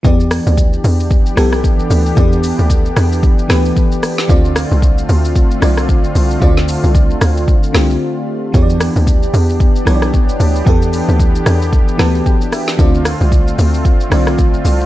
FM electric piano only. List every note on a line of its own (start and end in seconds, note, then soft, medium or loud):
0.03 0.90 E3 medium
0.03 0.90 B3 medium
0.03 0.91 G4 medium
0.03 0.92 D5 loud
1.36 2.02 E3 medium
1.36 2.02 B3 medium
1.36 2.03 G4 medium
1.36 2.04 A4 loud
2.15 3.02 E3 medium
2.15 3.03 B3 medium
2.15 3.03 G4 medium
2.15 3.04 D5 loud
3.48 4.14 E3 medium
3.48 4.15 B3 medium
3.48 4.15 G4 medium
3.48 4.16 B4 loud
4.28 5.14 D3 medium
4.28 5.15 C4 medium
4.28 5.16 F4 medium
4.28 5.16 D5 loud
5.60 6.27 D3 medium
5.60 6.27 C4 medium
5.60 6.28 F4 medium
5.60 6.29 D5 loud
6.40 7.27 D3 medium
6.40 7.27 C4 medium
6.40 7.28 F4 medium
6.40 7.29 D5 loud
7.73 8.39 D3 medium
7.73 8.40 C4 medium
7.73 8.40 F4 medium
7.73 8.41 G4 medium
8.52 9.39 E3 medium
8.52 9.40 B3 medium
8.52 9.40 G4 medium
8.52 8.63 C#5 medium
8.62 9.44 D5 loud
9.85 10.51 E3 medium
9.85 10.52 B3 medium
9.85 10.53 G4 medium
9.85 9.95 C#5 medium
9.95 10.56 D5 loud
10.65 11.52 E3 medium
10.65 11.52 B3 medium
10.65 11.53 G4 medium
10.65 11.53 A4 loud
11.98 12.64 E3 medium
11.98 12.65 B3 medium
11.98 12.07 F#4 medium
11.98 12.66 B4 loud
11.98 12.24 A5 medium
12.07 12.68 G4 medium
12.26 12.51 G5 medium
12.53 12.77 E5 medium
12.77 13.64 D3 medium
12.77 13.64 C4 medium
12.77 13.65 F4 medium
12.77 13.66 D5 medium
14.10 14.76 D3 medium
14.10 14.77 C4 medium
14.10 14.77 F4 medium
14.10 14.78 D5 loud